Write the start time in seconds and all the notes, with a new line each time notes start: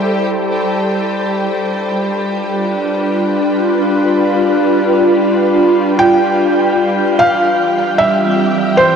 Already playing: G3 E4 G4 A4 C5 G5
1.16 F4
1.35 D4
1.41 B4
5.99 G5
7.19 G3 F5
7.23 E3 G4 G5
7.98 E5
8.03 A4
8.23 C4 A5
8.36 G4
8.77 C5